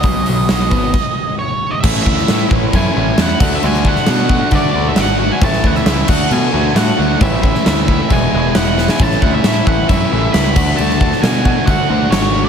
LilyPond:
<<
  \new Staff \with { instrumentName = "Lead electric guitar" } { \time 4/4 \key a \major \tempo 4 = 134 dis''2. cis''8. dis''16 | e''8 e''4 r8 gis''4 fis''8. e''16 | gis''8 fis''4. d''8. e''16 fis''8. gis''16 | a''8 fis''16 e''8. fis''8 gis''4 fis''4 |
e''4 e''4 gis''4 fis''8. gis''16 | a''8 fis''16 e''8. fis''8 e''4 b''4 | a''4 gis''4 fis''4 cis''8. d''16 | }
  \new Staff \with { instrumentName = "Overdriven electric guitar" } { \time 4/4 \key a \major b,8 fis8 fis8 b8 r2 | <a, e a cis' e'>8 <a cis' e'>8 <a, e a cis' e'>8 <a cis' e'>8 <e a cis' e'>8 <a, e a cis' e'>8 <e a cis' e'>8 <d a d' fis'>8 | <d a d' fis'>8 <a d' fis'>8 <d a d' fis'>8 <a d' fis'>8 <d a d' fis'>8 <d a d' fis'>8 <d a d' fis'>8 <a d' fis'>8 | <a, e a cis' e'>8 <a cis' e'>8 <a, e a cis' e'>8 <d a d' fis'>8 <d a d' fis'>8 <d a d' fis'>8 <d a d' fis'>8 <a d' fis'>8 |
<a, e a cis' e'>8 <a cis' e'>8 <a, e a cis' e'>8 <a cis' e'>8 <e, b, e gis b e'>8 <e, b, e gis b e'>8 <e gis b e'>8 <e gis b e'>8 | <a, e a cis' e'>8 <a cis' e'>8 <a, e a cis' e'>8 <a cis' e'>8 <e a cis' e'>8 <a, e a cis' e'>8 <e a cis' e'>8 <d a d' fis'>8 | <d a d' fis'>8 <a d' fis'>8 <d a d' fis'>8 <a d' fis'>8 <d a d' fis'>8 <d a d' fis'>8 <d a d' fis'>8 <a d' fis'>8 | }
  \new Staff \with { instrumentName = "Picked electric bass" } { \clef bass \time 4/4 \key a \major b,,8 b,,8 b,,8 gis,,8 r2 | a,,8 d,8 a,8 a,,8 fis,8 a,,8 e,8 d,8 | d,4 b,4 d8 d,8 gis,,4 | a,,8 d,8 cis,8 d,8 b,8 d,8 a,8 d,8 |
a,,4 d,4 e,,8 e,,8 e,,4 | a,,8 d,8 a,8 a,,8 fis,8 a,,8 cis,8 d,8 | d,4 b,4 d8 d,8 gis,,4 | }
  \new DrumStaff \with { instrumentName = "Drums" } \drummode { \time 4/4 <hho bd>8 hho8 <hho sn>8 <hho bd>8 <cymc bd>4 r4 | <cymc bd>8 bd16 sn16 <cymc sn>8 bd8 <cymc bd>4 <cymc sn>8 <cymc bd>8 | cymc16 sn16 bd16 sn16 <cymc sn>8 bd8 <cymc bd>4 <cymc sn>4 | <cymc bd>16 sn16 bd16 sn16 <cymc sn>8 <cymc bd>8 cymc4 <cymc sn>4 |
<cymc bd>8 bd16 sn16 <cymc sn>8 bd8 <cymc bd>4 <cymc sn>8 sn16 sn16 | <cymc bd>16 sn16 bd8 <cymc sn>8 bd8 <cymc bd>4 <cymc sn>8 <cymc bd>8 | cymc16 sn16 bd16 sn16 <cymc sn>8 bd8 <cymc bd>4 <cymc sn>4 | }
>>